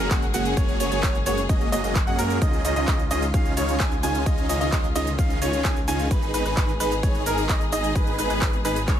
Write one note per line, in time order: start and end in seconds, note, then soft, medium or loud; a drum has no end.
0.00 2.38 C#3 medium
0.00 6.07 G#3 medium
0.00 2.38 A#3 medium
0.00 2.38 G#4 medium
0.11 0.32 F#1 loud
0.11 0.25 A#3 medium
0.11 0.25 C#4 medium
0.11 0.25 F#5 loud
0.11 kick loud
0.11 clap loud
0.11 closed hi-hat medium
0.11 ride medium
0.11 cabasa soft
0.22 closed hi-hat soft
0.22 cabasa soft
0.34 0.55 F#1 loud
0.34 0.54 A#3 loud
0.34 0.54 C#4 medium
0.34 0.54 F#4 medium
0.34 0.54 G#4 medium
0.34 0.54 F#5 loud
0.34 open hi-hat loud
0.34 ride medium
0.34 cabasa medium
0.45 closed hi-hat medium
0.45 cabasa soft
0.57 0.78 F#1 loud
0.57 0.77 A#3 medium
0.57 0.77 C#4 medium
0.57 0.77 F#4 medium
0.57 0.77 G#4 medium
0.57 0.77 C#5 medium
0.57 kick loud
0.57 closed hi-hat medium
0.57 ride medium
0.57 cabasa soft
0.69 closed hi-hat soft
0.69 cabasa soft
0.80 0.90 F#1 loud
0.80 0.90 A#3 medium
0.80 0.90 C#4 medium
0.80 0.90 F#4 medium
0.80 0.90 G#4 medium
0.80 0.90 C#5 medium
0.80 open hi-hat loud
0.80 ride medium
0.80 cabasa medium
0.92 1.01 F#1 loud
0.92 1.02 A#3 medium
0.92 1.02 C#4 medium
0.92 1.02 F#4 medium
0.92 1.02 G#4 medium
0.92 1.02 C#5 medium
0.92 closed hi-hat medium
0.92 cabasa soft
1.03 1.24 F#1 loud
1.03 1.17 A#3 medium
1.03 1.17 C#5 medium
1.03 kick loud
1.03 clap loud
1.03 closed hi-hat soft
1.03 ride medium
1.03 cabasa soft
1.15 closed hi-hat soft
1.15 cabasa soft
1.26 1.47 F#1 loud
1.26 1.40 A#3 loud
1.26 1.40 C#4 medium
1.26 1.40 F#4 medium
1.26 1.40 G#4 medium
1.26 1.40 C#5 loud
1.26 open hi-hat loud
1.26 ride medium
1.26 cabasa medium
1.38 closed hi-hat medium
1.38 cabasa soft
1.49 1.70 F#1 loud
1.49 1.69 A#3 medium
1.49 1.69 C#4 medium
1.49 1.69 F#4 medium
1.49 1.69 G#4 medium
1.49 1.69 D#5 medium
1.49 kick loud
1.49 closed hi-hat medium
1.49 ride medium
1.49 cabasa soft
1.61 closed hi-hat soft
1.61 cabasa soft
1.72 1.82 F#1 loud
1.72 1.81 A#3 medium
1.72 1.81 C#4 medium
1.72 1.81 F#4 medium
1.72 1.81 G#4 medium
1.72 1.81 D#5 loud
1.72 open hi-hat loud
1.72 ride medium
1.72 cabasa medium
1.84 2.05 F#1 loud
1.84 1.98 A#3 medium
1.84 1.98 C#4 medium
1.84 1.98 F#4 medium
1.84 1.98 G#4 medium
1.84 1.98 D#5 medium
1.84 closed hi-hat medium
1.84 cabasa soft
1.95 kick loud
1.95 clap loud
1.95 closed hi-hat medium
1.95 ride medium
1.95 cabasa soft
2.07 2.16 F#2 loud
2.07 2.17 A#3 loud
2.07 2.17 C#4 medium
2.07 2.17 F#4 medium
2.07 2.17 G#4 medium
2.07 2.17 F#5 loud
2.07 closed hi-hat soft
2.07 cabasa soft
2.18 2.39 F#2 loud
2.18 2.39 A#3 medium
2.18 2.39 C#4 medium
2.18 2.39 F#4 medium
2.18 2.39 G#4 medium
2.18 2.39 A#4 loud
2.18 open hi-hat loud
2.18 ride medium
2.18 cabasa medium
2.30 closed hi-hat medium
2.30 cabasa soft
2.42 2.62 C#2 loud
2.42 9.00 D#3 medium
2.42 6.07 C#4 medium
2.42 2.62 D#4 medium
2.42 2.62 F4 medium
2.42 6.07 F4 medium
2.42 2.62 G#4 medium
2.42 2.62 D#5 medium
2.42 kick loud
2.42 closed hi-hat medium
2.42 ride medium
2.42 cabasa soft
2.53 closed hi-hat soft
2.53 cabasa soft
2.65 2.74 C#2 loud
2.65 2.75 C#4 medium
2.65 2.75 D#4 medium
2.65 2.75 F4 medium
2.65 2.75 G#4 medium
2.65 2.75 D#5 medium
2.65 open hi-hat loud
2.65 ride medium
2.65 cabasa medium
2.76 2.86 C#2 loud
2.76 2.86 C#4 medium
2.76 2.86 D#4 medium
2.76 2.86 F4 medium
2.76 2.86 G#4 medium
2.76 2.86 D#5 medium
2.76 closed hi-hat medium
2.76 cabasa soft
2.88 3.09 C#2 loud
2.88 3.02 G#4 medium
2.88 3.02 D#5 medium
2.88 kick loud
2.88 clap loud
2.88 closed hi-hat soft
2.88 ride medium
2.88 cabasa soft
2.99 closed hi-hat soft
2.99 cabasa soft
3.11 3.32 C#2 loud
3.11 3.25 C#4 loud
3.11 3.25 D#4 medium
3.11 3.25 F4 medium
3.11 3.25 G#4 medium
3.11 3.25 D#5 loud
3.11 open hi-hat loud
3.11 ride medium
3.11 cabasa medium
3.22 closed hi-hat medium
3.22 cabasa soft
3.34 3.55 C#2 loud
3.34 3.54 C#4 medium
3.34 3.54 D#4 medium
3.34 3.54 F4 medium
3.34 3.54 G#4 medium
3.34 3.54 F5 medium
3.34 kick loud
3.34 closed hi-hat medium
3.34 ride medium
3.34 cabasa soft
3.46 closed hi-hat soft
3.46 cabasa soft
3.57 3.78 C#2 loud
3.57 3.77 C#4 medium
3.57 3.77 D#4 medium
3.57 3.77 F4 medium
3.57 3.77 G#4 medium
3.57 3.77 C#5 loud
3.57 open hi-hat loud
3.57 ride medium
3.57 cabasa medium
3.69 closed hi-hat medium
3.69 cabasa soft
3.80 4.01 C#2 loud
3.80 3.94 G#5 loud
3.80 kick loud
3.80 clap loud
3.80 closed hi-hat medium
3.80 ride medium
3.80 cabasa soft
3.92 closed hi-hat soft
3.92 cabasa soft
4.03 4.24 C#2 loud
4.03 4.24 C#4 loud
4.03 4.24 D#4 medium
4.03 4.24 F4 medium
4.03 4.24 G#4 medium
4.03 4.24 G#5 loud
4.03 open hi-hat loud
4.03 ride medium
4.03 cabasa medium
4.15 closed hi-hat medium
4.15 cabasa soft
4.26 4.47 C#2 loud
4.26 4.47 D#5 medium
4.26 kick loud
4.26 closed hi-hat medium
4.26 ride medium
4.26 cabasa soft
4.38 closed hi-hat soft
4.38 cabasa soft
4.49 4.59 C#2 loud
4.49 4.59 C#4 medium
4.49 4.59 D#4 medium
4.49 4.59 F4 medium
4.49 4.59 G#4 medium
4.49 4.59 D#5 medium
4.49 open hi-hat loud
4.49 ride medium
4.49 cabasa medium
4.61 4.70 C#2 loud
4.61 4.71 C#4 medium
4.61 4.71 D#4 medium
4.61 4.71 F4 medium
4.61 4.71 G#4 medium
4.61 4.71 D#5 medium
4.61 4.71 D#5 loud
4.61 closed hi-hat medium
4.61 cabasa soft
4.72 4.93 C#2 loud
4.72 4.87 G#4 medium
4.72 4.87 D#5 medium
4.72 kick loud
4.72 clap loud
4.72 closed hi-hat medium
4.72 ride medium
4.72 cabasa soft
4.84 closed hi-hat soft
4.84 cabasa soft
4.96 5.16 C#2 loud
4.96 5.10 C#4 loud
4.96 5.10 D#4 medium
4.96 5.10 F4 medium
4.96 5.10 G#4 medium
4.96 5.10 D#5 loud
4.96 open hi-hat loud
4.96 ride medium
4.96 cabasa medium
5.07 closed hi-hat medium
5.07 cabasa soft
5.19 5.39 C#2 loud
5.19 5.38 C#4 medium
5.19 5.38 D#4 medium
5.19 5.38 F4 medium
5.19 5.38 G#4 medium
5.19 5.38 F5 medium
5.19 kick loud
5.19 closed hi-hat medium
5.19 ride medium
5.19 cabasa soft
5.30 closed hi-hat soft
5.30 cabasa soft
5.42 5.63 C#2 loud
5.42 5.62 C#4 medium
5.42 5.62 D#4 medium
5.42 5.62 F4 medium
5.42 5.62 G#4 medium
5.42 5.62 C#5 loud
5.42 open hi-hat loud
5.42 ride medium
5.42 cabasa medium
5.53 closed hi-hat medium
5.53 cabasa soft
5.65 5.86 C#2 loud
5.65 5.79 G#4 medium
5.65 5.79 G#5 loud
5.65 kick loud
5.65 clap loud
5.65 closed hi-hat medium
5.65 ride medium
5.65 cabasa soft
5.76 closed hi-hat soft
5.76 cabasa soft
5.88 6.09 C#2 medium
5.88 6.08 C#4 loud
5.88 6.08 D#4 medium
5.88 6.08 F4 medium
5.88 6.08 G#4 medium
5.88 6.08 G#5 loud
5.88 open hi-hat loud
5.88 ride medium
5.88 cabasa medium
5.99 closed hi-hat medium
5.99 cabasa soft
6.11 6.32 G#1 loud
6.11 9.00 G#3 medium
6.11 9.00 B3 medium
6.11 6.31 D#4 medium
6.11 9.00 G#4 medium
6.11 6.31 G#4 medium
6.11 6.31 B4 medium
6.11 kick loud
6.11 closed hi-hat medium
6.11 ride medium
6.11 cabasa soft
6.22 closed hi-hat soft
6.22 cabasa soft
6.34 6.43 G#1 loud
6.34 6.44 D#4 medium
6.34 6.44 G#4 medium
6.34 6.44 B4 medium
6.34 open hi-hat loud
6.34 ride medium
6.34 cabasa medium
6.46 6.55 G#1 loud
6.46 6.55 D#4 medium
6.46 6.55 G#4 medium
6.46 6.55 B4 loud
6.46 6.55 B4 medium
6.46 closed hi-hat medium
6.46 cabasa soft
6.57 6.78 G#1 loud
6.57 6.71 D#4 medium
6.57 6.71 G#4 medium
6.57 6.71 B4 medium
6.57 6.71 B4 loud
6.57 kick loud
6.57 clap loud
6.57 closed hi-hat medium
6.57 ride medium
6.57 cabasa soft
6.69 closed hi-hat soft
6.69 cabasa soft
6.80 7.01 G#1 loud
6.80 6.94 D#4 loud
6.80 6.94 G#4 medium
6.80 6.94 B4 loud
6.80 open hi-hat loud
6.80 ride medium
6.80 cabasa medium
6.92 closed hi-hat medium
6.92 cabasa soft
7.03 7.24 G#1 loud
7.03 7.23 D#4 medium
7.03 7.23 G#4 medium
7.03 7.23 C#5 medium
7.03 kick loud
7.03 closed hi-hat medium
7.03 ride medium
7.03 cabasa soft
7.15 closed hi-hat soft
7.15 cabasa soft
7.26 7.47 G#1 loud
7.26 7.47 D#4 medium
7.26 7.47 G#4 medium
7.26 7.47 A#4 loud
7.26 open hi-hat loud
7.26 ride medium
7.26 cabasa medium
7.38 closed hi-hat medium
7.38 cabasa soft
7.49 7.70 G#1 loud
7.49 7.64 D#4 medium
7.49 7.64 G#4 medium
7.49 7.64 D#5 loud
7.49 kick loud
7.49 clap loud
7.49 closed hi-hat medium
7.49 ride medium
7.49 cabasa soft
7.61 closed hi-hat soft
7.61 cabasa soft
7.72 7.93 G#1 loud
7.72 7.93 D#4 loud
7.72 7.93 G#4 medium
7.72 7.93 D#5 loud
7.72 open hi-hat loud
7.72 ride medium
7.72 cabasa medium
7.84 closed hi-hat medium
7.84 cabasa soft
7.95 8.16 G#1 loud
7.95 8.16 D#4 medium
7.95 8.16 G#4 medium
7.95 8.16 B4 medium
7.95 kick loud
7.95 closed hi-hat medium
7.95 ride medium
7.95 cabasa soft
8.07 closed hi-hat soft
8.07 cabasa soft
8.19 8.28 G#1 loud
8.19 8.29 D#4 medium
8.19 8.29 G#4 medium
8.19 8.28 B4 medium
8.19 8.29 B4 medium
8.19 open hi-hat loud
8.19 ride medium
8.19 cabasa medium
8.30 8.39 G#1 loud
8.30 8.40 D#4 medium
8.30 8.40 G#4 medium
8.30 8.40 B4 medium
8.30 8.40 B4 loud
8.30 closed hi-hat medium
8.30 cabasa soft
8.42 8.63 G#1 loud
8.42 8.56 D#4 medium
8.42 8.56 G#4 medium
8.42 8.56 B4 medium
8.42 kick loud
8.42 clap loud
8.42 closed hi-hat medium
8.42 ride medium
8.42 cabasa soft
8.53 closed hi-hat soft
8.53 cabasa soft
8.65 8.86 G#1 loud
8.65 8.79 D#4 loud
8.65 8.79 G#4 medium
8.65 8.79 B4 loud
8.65 open hi-hat loud
8.65 ride medium
8.65 cabasa medium
8.76 closed hi-hat medium
8.76 cabasa soft
8.88 9.00 G#1 loud
8.88 9.00 D#4 medium
8.88 9.00 G#4 medium
8.88 9.00 C#5 medium
8.88 kick loud
8.88 clap medium
8.88 closed hi-hat medium
8.88 ride medium
8.88 reverse cymbal medium
8.88 cabasa soft